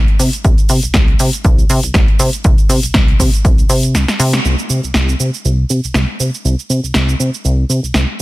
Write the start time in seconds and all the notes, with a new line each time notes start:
0.08 closed hi-hat
0.20 C3, open hi-hat, cabasa
0.33 closed hi-hat, cabasa
0.45 C2, kick, closed hi-hat, cabasa
0.58 closed hi-hat, cabasa
0.69 C3, open hi-hat, cabasa
0.83 C2, closed hi-hat, cabasa
0.94 C2, kick, snare, closed hi-hat, cabasa
1.08 closed hi-hat
1.19 C3, open hi-hat, cabasa
1.33 closed hi-hat, cabasa
1.45 C2, kick, closed hi-hat, cabasa
1.58 closed hi-hat, cabasa
1.70 C3, open hi-hat, cabasa
1.83 C2, closed hi-hat, cabasa
1.94 C2, kick, snare, closed hi-hat, cabasa
2.08 closed hi-hat
2.19 C3, open hi-hat, cabasa
2.33 closed hi-hat, cabasa
2.44 C2, kick, closed hi-hat, cabasa
2.58 closed hi-hat, cabasa
2.69 C3, open hi-hat, cabasa
2.83 C2, closed hi-hat, cabasa
2.94 C2, kick, snare, closed hi-hat, cabasa
3.08 closed hi-hat
3.20 C3, kick, open hi-hat, cabasa
3.34 closed hi-hat, cabasa
3.45 C2, kick, closed hi-hat, cabasa
3.58 closed hi-hat, cabasa
3.69 C3, open hi-hat, cabasa
3.83 closed hi-hat, cabasa
3.95 C2, snare, closed hi-hat, cabasa
4.08 snare, closed hi-hat, cabasa
4.20 C3, open hi-hat, cabasa
4.33 snare, closed hi-hat, cabasa
4.45 C2, cabasa
4.59 cabasa
4.70 C3, cabasa
4.84 C2, cabasa
4.94 C2, snare, cabasa
5.09 cabasa
5.20 C3, cabasa
5.34 cabasa
5.45 C2, cabasa
5.70 C3, cabasa
5.84 C2, cabasa
5.94 C2, snare, cabasa
6.20 C3, cabasa
6.34 cabasa
6.45 C2, cabasa
6.59 cabasa
6.70 C3, cabasa
6.83 C2, cabasa
6.94 C2, snare, cabasa
7.09 cabasa
7.20 C3, cabasa
7.34 cabasa
7.45 C2, cabasa
7.70 C3, cabasa
7.83 C2, cabasa
7.94 C2, snare, cabasa